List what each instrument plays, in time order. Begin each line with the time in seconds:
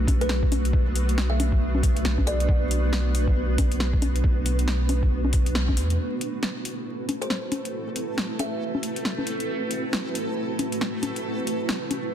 Already playing: sub bass B1, ambient pad A3 B3 D4 F#4 B4
0.07 kick, open hi-hat, low bongo
0.21 kalimba B4, closed hi-hat
0.29 snare
0.43 kick
0.52 open hi-hat, low bongo
0.65 closed hi-hat
0.73 kick
0.96 open hi-hat
1.09 closed hi-hat
1.18 snare
1.30 kalimba E5
1.40 open hi-hat, low bongo
1.52 kick
1.75 low bongo
1.83 kick, open hi-hat
1.97 closed hi-hat
2.05 sub bass B1, snare
2.18 kick, low bongo
2.27 kalimba D5, open hi-hat
2.40 closed hi-hat
2.49 sub bass B1, kick
2.71 open hi-hat
2.93 snare
3.15 open hi-hat
3.28 kick
3.58 kick, open hi-hat, low bongo
3.72 closed hi-hat
3.80 snare
3.93 kick
4.02 open hi-hat, low bongo
4.16 closed hi-hat
4.24 kick
4.46 open hi-hat
4.59 closed hi-hat
4.68 snare
4.89 open hi-hat, low bongo
5.03 kick
5.25 low bongo
5.33 kick, open hi-hat
5.46 closed hi-hat
5.55 snare
5.68 kick, low bongo
5.77 sub bass E2, open hi-hat
5.90 closed hi-hat
5.98 ambient pad A3 C4 E4 F#4 B4, synth texture A3 A4
6.21 closed hi-hat
6.43 snare
6.65 closed hi-hat
7.09 closed hi-hat, low bongo
7.21 kalimba C5, closed hi-hat
7.30 kalimba C5, snare
7.52 closed hi-hat, low bongo
7.65 closed hi-hat
7.96 closed hi-hat
8.18 snare
8.39 kalimba E5, closed hi-hat, low bongo
8.75 low bongo
8.83 closed hi-hat
8.96 closed hi-hat
9.05 snare
9.18 low bongo
9.27 closed hi-hat
9.40 closed hi-hat
9.71 closed hi-hat
9.93 snare
10.15 closed hi-hat
10.59 closed hi-hat, low bongo
10.72 closed hi-hat
10.81 snare
11.03 closed hi-hat, low bongo
11.16 closed hi-hat
11.47 closed hi-hat
11.69 snare
11.91 closed hi-hat, low bongo